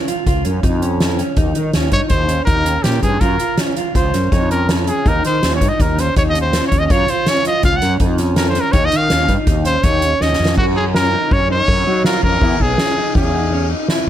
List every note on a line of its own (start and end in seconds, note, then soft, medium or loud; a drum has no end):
0.08 0.24 F4 medium
0.08 closed hi-hat medium
0.27 0.41 C#2 medium
0.27 0.42 F4 medium
0.27 kick medium
0.27 closed hi-hat medium
0.45 0.60 F#2 medium
0.45 0.60 C#4 medium
0.45 closed hi-hat medium
0.63 1.20 F2 loud
0.63 0.79 D#4 medium
0.63 kick medium
0.63 closed hi-hat medium
0.82 0.97 C#4 medium
0.82 closed hi-hat medium
1.00 1.16 C#4 medium
1.00 snare loud
1.00 closed hi-hat medium
1.19 1.34 C#4 medium
1.19 closed hi-hat medium
1.37 1.51 D#2 loud
1.37 1.53 D#4 medium
1.37 kick loud
1.37 closed hi-hat medium
1.55 1.70 D#3 medium
1.55 1.71 D#4 medium
1.55 closed hi-hat medium
1.73 1.89 D#2 medium
1.73 1.90 C#4 medium
1.73 snare loud
1.73 closed hi-hat medium
1.92 1.99 G2 medium
1.92 2.08 D#4 medium
1.92 2.01 C#5 medium
1.92 kick medium
1.92 closed hi-hat medium
2.09 2.39 D#2 medium
2.09 2.26 D#4 medium
2.09 2.45 C5 medium
2.09 kick loud
2.09 closed hi-hat medium
2.28 2.44 C#4 medium
2.28 closed hi-hat medium
2.45 2.76 D#2 medium
2.45 2.84 A#4 loud
2.45 kick loud
2.45 closed hi-hat medium
2.65 2.81 C#4 medium
2.65 closed hi-hat medium
2.83 3.02 A#2 medium
2.83 3.00 C#4 medium
2.83 3.02 G4 medium
2.83 snare loud
2.83 closed hi-hat loud
3.02 3.20 G2 medium
3.02 3.18 C#4 medium
3.02 3.22 G#4 medium
3.02 kick medium
3.02 closed hi-hat medium
3.20 3.36 F#2 medium
3.20 3.37 F4 medium
3.20 3.58 A#4 medium
3.20 kick loud
3.20 closed hi-hat medium
3.39 3.55 F4 medium
3.39 closed hi-hat medium
3.58 3.74 C#4 medium
3.58 snare loud
3.58 closed hi-hat medium
3.76 3.92 F4 medium
3.76 closed hi-hat medium
3.95 4.10 C#2 medium
3.95 4.11 F4 medium
3.95 4.34 C5 medium
3.95 kick loud
3.95 snare soft
3.95 closed hi-hat medium
4.14 4.28 F#2 medium
4.14 4.29 C#4 medium
4.14 snare soft
4.14 closed hi-hat medium
4.32 4.89 F2 medium
4.32 4.48 D#4 medium
4.32 4.51 C#5 medium
4.32 kick loud
4.32 snare soft
4.32 closed hi-hat medium
4.51 4.66 C#4 medium
4.51 4.68 A#4 medium
4.51 closed hi-hat medium
4.69 4.85 C#4 medium
4.69 snare loud
4.69 closed hi-hat medium
4.87 5.04 C#4 medium
4.87 5.10 G#4 medium
4.87 closed hi-hat medium
5.06 5.20 D#2 loud
5.06 5.22 D#4 medium
5.06 5.25 A#4 medium
5.06 kick loud
5.06 closed hi-hat medium
5.25 5.39 D#3 medium
5.25 5.40 D#4 medium
5.25 5.54 C5 medium
5.25 snare soft
5.25 closed hi-hat medium
5.43 5.57 D#2 medium
5.43 5.59 C#4 medium
5.43 snare loud
5.43 closed hi-hat medium
5.56 5.70 C#5 medium
5.61 5.68 G2 medium
5.61 5.77 D#4 medium
5.61 kick medium
5.61 closed hi-hat medium
5.69 5.83 D#5 medium
5.80 6.08 D#2 medium
5.80 5.95 D#4 medium
5.80 6.02 A#4 medium
5.80 kick loud
5.80 closed hi-hat medium
5.98 6.13 C#4 medium
5.98 6.17 C5 medium
5.98 snare soft
5.98 closed hi-hat medium
6.16 6.59 D#2 medium
6.16 6.32 D#4 medium
6.16 6.23 C#5 medium
6.16 kick loud
6.16 closed hi-hat medium
6.30 6.41 D#5 medium
6.34 6.50 C#4 medium
6.34 closed hi-hat medium
6.41 6.64 C5 medium
6.53 6.69 C#4 medium
6.53 snare loud
6.53 closed hi-hat loud
6.67 6.80 C#5 medium
6.72 6.86 D#2 medium
6.72 6.88 C#4 medium
6.72 kick medium
6.72 closed hi-hat medium
6.79 6.86 D#5 loud
6.86 6.93 D#5 medium
6.90 7.04 F#2 medium
6.90 7.06 F4 medium
6.90 7.11 C#5 medium
6.90 kick loud
6.90 closed hi-hat medium
7.08 7.25 F4 medium
7.08 7.30 C5 medium
7.08 closed hi-hat medium
7.26 7.43 C#4 medium
7.26 7.46 C#5 loud
7.26 snare loud
7.26 closed hi-hat medium
7.45 7.62 F4 medium
7.45 7.63 D#5 medium
7.45 closed hi-hat medium
7.63 7.78 C#2 medium
7.63 7.80 F4 medium
7.63 7.78 F5 loud
7.63 kick loud
7.63 snare soft
7.63 closed hi-hat medium
7.76 7.95 F#5 loud
7.82 7.96 F#2 loud
7.82 7.98 C#4 medium
7.82 snare soft
7.82 closed hi-hat medium
8.00 8.57 F2 loud
8.00 8.16 D#4 medium
8.00 kick loud
8.00 closed hi-hat medium
8.18 8.34 C#4 medium
8.18 snare soft
8.18 closed hi-hat medium
8.36 8.52 C#4 medium
8.36 8.48 A#4 medium
8.36 snare loud
8.36 closed hi-hat loud
8.49 8.62 C5 medium
8.55 8.71 C#4 medium
8.55 snare soft
8.55 closed hi-hat medium
8.61 8.73 A#4 medium
8.72 8.88 D#2 loud
8.72 8.89 D#4 loud
8.72 8.87 C#5 loud
8.72 kick loud
8.72 closed hi-hat medium
8.85 8.98 D#5 loud
8.92 9.07 D#3 medium
8.92 9.08 D#4 medium
8.92 closed hi-hat medium
8.97 9.34 F5 loud
9.10 9.25 D#2 medium
9.10 9.26 C#4 medium
9.10 snare loud
9.10 closed hi-hat medium
9.28 9.36 G2 loud
9.28 9.44 D#4 medium
9.28 kick medium
9.28 closed hi-hat medium
9.47 9.76 D#2 medium
9.47 9.63 D#4 medium
9.47 kick loud
9.47 snare soft
9.47 closed hi-hat medium
9.65 9.81 C#4 medium
9.65 9.85 C5 loud
9.65 closed hi-hat medium
9.83 10.12 D#2 loud
9.83 10.00 D#4 loud
9.83 10.23 C#5 loud
9.83 kick loud
9.83 closed hi-hat medium
10.02 10.19 C#4 medium
10.02 closed hi-hat medium
10.21 10.38 D#2 medium
10.21 10.37 C#4 medium
10.21 10.57 D#5 medium
10.21 snare medium
10.33 snare medium
10.39 10.56 F2 medium
10.39 10.55 C#4 medium
10.45 snare loud
10.57 11.14 F#2 loud
10.57 10.66 F#4 medium
10.57 10.74 F#4 medium
10.57 kick loud
10.57 crash loud
10.76 10.92 C#4 medium
10.76 10.85 G#4 medium
10.76 ride medium
10.94 11.10 C#4 medium
10.94 11.34 A#4 loud
10.94 snare loud
11.13 11.29 D#4 medium
11.13 ride medium
11.31 11.60 F#2 medium
11.31 11.47 C#4 medium
11.31 11.51 C#5 medium
11.31 kick loud
11.31 ride medium
11.49 11.65 D#4 medium
11.49 12.02 C#5 loud
11.49 ride medium
11.68 11.83 F#2 loud
11.68 11.83 C#4 medium
11.68 kick loud
11.68 ride medium
11.86 12.15 F#3 medium
11.86 12.02 D#4 medium
11.86 ride medium
12.04 12.21 F4 medium
12.04 12.23 A#4 medium
12.04 snare loud
12.04 ride loud
12.23 12.38 F2 medium
12.23 12.39 C#4 medium
12.23 12.63 A#4 loud
12.23 kick medium
12.23 ride medium
12.41 12.56 E2 loud
12.41 12.58 E4 medium
12.41 kick loud
12.41 ride medium
12.60 12.75 B1 loud
12.60 12.76 B3 medium
12.60 13.16 G#4 medium
12.60 kick medium
12.60 ride medium
12.78 12.95 C#4 medium
12.78 snare loud
12.78 ride medium
12.97 13.13 D#4 medium
12.97 ride medium
13.15 13.72 E2 medium
13.15 13.31 C#4 medium
13.15 13.68 G#4 medium
13.15 kick loud
13.15 snare soft
13.15 ride medium
13.34 13.50 D#4 medium
13.34 ride medium
13.51 13.68 C#4 medium
13.51 ride medium
13.70 13.86 D#4 medium
13.70 ride medium
13.88 14.05 E4 medium
13.88 snare loud
13.88 ride medium